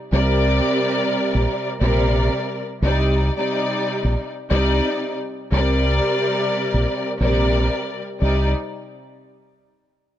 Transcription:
0.12 fingered electric bass C2, string section C3 G3 A#4 D5
1.35 fingered electric bass A#1
1.80 fingered electric bass A#1, string section C3 G3 A#4 D5
2.82 fingered electric bass C2, string section C3 G3 D#4 D5
3.36 string section C3 G3 D#4 D5
4.04 fingered electric bass A#1
4.50 fingered electric bass C2, string section C3 G3 D#4 D5
5.51 fingered electric bass C2, string section C3 G3 A#4 D5
6.74 fingered electric bass A#1
7.20 fingered electric bass A#1, string section C3 G3 A#4 D5
8.21 fingered electric bass C2, string section C3 G3 D#4 D5

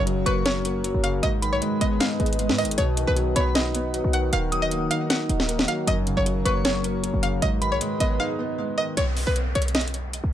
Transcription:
Already playing: 808-style bass F#1, grand piano F#2 C#3, analog synth pad F#3 F#4 A#4 C#5, synth pluck C#5
0.07 grand piano F#3, closed hi-hat
0.26 808-style bass F#1, grand piano A#3, synth pluck B4, synth bell C#6, closed hi-hat
0.46 grand piano C#4, synth pluck C#5, snare, closed hi-hat
0.65 grand piano A#3, closed hi-hat
0.84 grand piano F#3, closed hi-hat
0.95 808-style bass F#1
1.04 grand piano C#3, synth pluck F5, closed hi-hat
1.23 808-style bass G#1, grand piano G#2, analog synth pad G#3 G#4 B4 D#5, synth pluck D#5, closed hi-hat
1.42 grand piano D#3, synth bell B5, closed hi-hat
1.53 808-style bass B1, synth pluck C#5
1.62 grand piano G#3, closed hi-hat
1.81 808-style bass G#1, grand piano B3, synth pluck D#5, closed hi-hat
2.00 grand piano D#4, synth pluck F5, snare, closed hi-hat
2.19 808-style bass G#1, grand piano B3, closed hi-hat
2.26 closed hi-hat
2.33 closed hi-hat
2.39 grand piano G#3, closed hi-hat
2.49 808-style bass G#2, snare
2.58 grand piano D#3, synth pluck D#5, closed hi-hat, open hi-hat
2.64 808-style bass G#1, closed hi-hat
2.71 closed hi-hat
2.78 808-style bass B1, grand piano B2, analog synth pad B3 F#5, synth pluck C#5, closed hi-hat
2.97 grand piano D#3, closed hi-hat
3.07 808-style bass B1, synth pluck B4
3.16 grand piano F#3, closed hi-hat
3.36 808-style bass B1, grand piano B3, synth pluck C#5, synth bell B5, closed hi-hat
3.55 grand piano D#4, synth pluck D#5, snare, closed hi-hat
3.75 grand piano B3, closed hi-hat
3.94 grand piano F#3, closed hi-hat
4.04 808-style bass B1
4.13 grand piano D#3, synth pluck F#5, closed hi-hat
4.33 808-style bass D#1, grand piano D#3, analog synth pad D#3 D#4 A#4, synth pluck F5, closed hi-hat
4.52 grand piano F#3, synth bell D#6, closed hi-hat
4.62 synth pluck D#5
4.71 grand piano A#3, closed hi-hat
4.91 grand piano D#4, synth pluck F5, closed hi-hat
5.10 grand piano D#5, synth pluck F#5, snare, closed hi-hat
5.29 808-style bass D#1, grand piano D#4, closed hi-hat
5.40 snare
5.49 grand piano A#3, closed hi-hat
5.59 snare
5.68 grand piano F#3, synth pluck F5, closed hi-hat
5.87 808-style bass F#1, grand piano F#2, analog synth pad F#3 F#4 C#5, synth pluck D#5, closed hi-hat
6.07 grand piano C#3, closed hi-hat
6.17 808-style bass F#1, synth pluck C#5
6.26 grand piano F#3, closed hi-hat
6.45 808-style bass F#1, grand piano A#3, synth pluck B4, synth bell C#6, closed hi-hat
6.65 grand piano C#4, synth pluck C#5, snare, closed hi-hat
6.84 grand piano A#3, closed hi-hat
7.03 grand piano F#3, closed hi-hat
7.14 808-style bass F#1
7.23 grand piano C#3, synth pluck F5, closed hi-hat
7.42 808-style bass G#1, grand piano G#2, analog synth pad G#3 G#4 B4 D#5, synth pluck D#5, closed hi-hat
7.61 grand piano D#3, synth bell B5, closed hi-hat
7.72 808-style bass B1, synth pluck C#5
7.81 grand piano G#3, closed hi-hat
8.00 808-style bass G#1, grand piano B3, synth pluck D#5, closed hi-hat
8.20 grand piano D#4, synth pluck F5
8.39 grand piano B3
8.58 grand piano G#3
8.78 grand piano D#3, synth pluck D#5
8.97 808-style bass B1, synth pluck C#5, closed hi-hat, downlifter
9.17 open hi-hat
9.27 808-style bass B1, synth pluck B4
9.36 closed hi-hat
9.55 808-style bass B1, synth pluck C#5, closed hi-hat
9.62 closed hi-hat
9.68 closed hi-hat
9.75 synth pluck D#5, snare, closed hi-hat
9.81 closed hi-hat
9.88 closed hi-hat
9.94 closed hi-hat
10.13 closed hi-hat
10.24 808-style bass B1

